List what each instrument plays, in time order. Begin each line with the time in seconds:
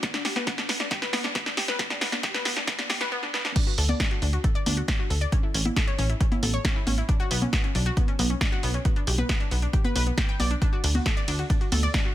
0.03 synth arpeggio sound B3, kick, snare, closed hi-hat
0.14 synth arpeggio sound D4, snare, closed hi-hat
0.25 synth arpeggio sound G4, snare, open hi-hat
0.36 synth arpeggio sound B4, snare, closed hi-hat, high conga
0.47 synth arpeggio sound B3, kick, snare, closed hi-hat
0.58 synth arpeggio sound D4, snare, closed hi-hat
0.69 synth arpeggio sound B3, snare, open hi-hat
0.80 synth arpeggio sound D4, snare, closed hi-hat
0.91 synth arpeggio sound G4, kick, snare, closed hi-hat
1.02 synth arpeggio sound B4, snare, closed hi-hat
1.13 synth arpeggio sound B3, snare, open hi-hat, high conga
1.24 synth arpeggio sound D4, snare, closed hi-hat
1.35 synth arpeggio sound B3, kick, snare, closed hi-hat
1.46 synth arpeggio sound D4, snare, closed hi-hat
1.57 synth arpeggio sound G4, snare, open hi-hat
1.68 synth arpeggio sound B4, snare, closed hi-hat
1.79 synth arpeggio sound B3, kick, snare, closed hi-hat
1.90 synth arpeggio sound D4, snare, closed hi-hat
2.01 synth arpeggio sound B3, snare, open hi-hat
2.12 synth arpeggio sound D4, snare, closed hi-hat, high conga
2.23 synth arpeggio sound G4, kick, snare, closed hi-hat
2.34 synth arpeggio sound B4, snare, closed hi-hat
2.45 synth arpeggio sound B3, snare, open hi-hat
2.57 synth arpeggio sound D4, snare, closed hi-hat
2.67 synth arpeggio sound B3, kick, snare, closed hi-hat
2.79 synth arpeggio sound D4, snare, closed hi-hat, high conga
2.90 synth arpeggio sound G4, snare, open hi-hat, high conga
3.01 synth arpeggio sound B4, snare, closed hi-hat
3.12 synth arpeggio sound B3
3.23 synth arpeggio sound D4, snare
3.34 synth arpeggio sound B3, snare
3.45 synth arpeggio sound D4, snare
3.56 synth arpeggio sound D4, kick, closed hi-hat, crash
3.67 synth arpeggio sound F#4
3.78 analog synth bass D2, synth arpeggio sound A4, open hi-hat
3.89 synth arpeggio sound D5, closed hi-hat, high conga
4.00 synth arpeggio sound D4, kick, snare, closed hi-hat
4.11 synth arpeggio sound F#4, closed hi-hat
4.22 analog synth bass D2, synth arpeggio sound D4, open hi-hat
4.33 synth arpeggio sound F#4, closed hi-hat
4.44 synth arpeggio sound A4, kick, closed hi-hat
4.55 synth arpeggio sound D5, closed hi-hat
4.66 analog synth bass D2, synth arpeggio sound D4, open hi-hat, high conga
4.77 synth arpeggio sound F#4, closed hi-hat
4.88 synth arpeggio sound D4, kick, snare, closed hi-hat
4.99 synth arpeggio sound F#4
5.10 analog synth bass D2, synth arpeggio sound A4, open hi-hat
5.21 synth arpeggio sound D5, closed hi-hat
5.32 synth arpeggio sound C#4, kick, closed hi-hat
5.43 synth arpeggio sound E4
5.54 analog synth bass A1, synth arpeggio sound C#4, open hi-hat
5.65 synth arpeggio sound E4, closed hi-hat, high conga
5.76 synth arpeggio sound A4, kick, snare, closed hi-hat
5.87 synth arpeggio sound C#5, closed hi-hat
5.98 analog synth bass A1, synth arpeggio sound C#4, open hi-hat
6.09 synth arpeggio sound E4, closed hi-hat
6.21 synth arpeggio sound C#4, kick, closed hi-hat
6.32 synth arpeggio sound E4, closed hi-hat, high conga
6.43 analog synth bass A1, synth arpeggio sound A4, open hi-hat, high conga
6.54 synth arpeggio sound C#5, closed hi-hat
6.65 synth arpeggio sound C#4, kick, snare, closed hi-hat
6.76 synth arpeggio sound E4
6.87 analog synth bass A1, synth arpeggio sound C#4, open hi-hat, high conga
6.98 synth arpeggio sound E4, closed hi-hat
7.09 synth arpeggio sound D4, kick, closed hi-hat
7.20 synth arpeggio sound F#4
7.31 analog synth bass B1, synth arpeggio sound B3, open hi-hat
7.42 synth arpeggio sound C#4, closed hi-hat, high conga
7.53 synth arpeggio sound B3, kick, snare, closed hi-hat
7.64 synth arpeggio sound C#4, closed hi-hat
7.75 analog synth bass B1, synth arpeggio sound D4, open hi-hat
7.86 synth arpeggio sound F#4, closed hi-hat
7.97 synth arpeggio sound B3, kick, closed hi-hat
8.08 synth arpeggio sound C#4, closed hi-hat
8.19 analog synth bass B1, synth arpeggio sound B3, open hi-hat, high conga
8.30 synth arpeggio sound C#4
8.41 synth arpeggio sound D4, kick, snare, closed hi-hat
8.52 synth arpeggio sound F#4
8.63 analog synth bass B1, synth arpeggio sound B3, open hi-hat
8.74 synth arpeggio sound C#4, closed hi-hat
8.85 synth arpeggio sound B3, kick, closed hi-hat
8.96 synth arpeggio sound D4, closed hi-hat
9.07 analog synth bass B1, synth arpeggio sound G4, open hi-hat
9.18 synth arpeggio sound B4, closed hi-hat, high conga
9.29 synth arpeggio sound B3, kick, snare, closed hi-hat
9.40 synth arpeggio sound D4, closed hi-hat
9.51 analog synth bass B1, synth arpeggio sound B3, open hi-hat
9.62 synth arpeggio sound D4, closed hi-hat
9.73 synth arpeggio sound G4, kick, closed hi-hat
9.84 synth arpeggio sound B4, closed hi-hat, high conga
9.96 analog synth bass B1, synth arpeggio sound B4, open hi-hat, high conga
10.07 synth arpeggio sound B3, closed hi-hat
10.18 synth arpeggio sound G5, kick, snare, closed hi-hat
10.29 synth arpeggio sound G5
10.40 analog synth bass B1, synth arpeggio sound D5, open hi-hat, high conga
10.51 synth arpeggio sound D4, closed hi-hat
10.62 synth arpeggio sound D4, kick, closed hi-hat
10.73 synth arpeggio sound F#4
10.84 analog synth bass D2, synth arpeggio sound D4, open hi-hat, ride
10.95 synth arpeggio sound F#4, closed hi-hat, high conga
11.06 synth arpeggio sound A4, kick, snare, closed hi-hat
11.17 synth arpeggio sound D5, closed hi-hat
11.28 analog synth bass D2, synth arpeggio sound D4, open hi-hat, ride
11.39 synth arpeggio sound F#4, closed hi-hat
11.50 synth arpeggio sound D4, kick, closed hi-hat
11.61 synth arpeggio sound F#4, closed hi-hat
11.72 analog synth bass D2, synth arpeggio sound A4, open hi-hat, ride, high conga
11.83 synth arpeggio sound D5, closed hi-hat
11.94 synth arpeggio sound D4, kick, snare, closed hi-hat
12.05 synth arpeggio sound F#4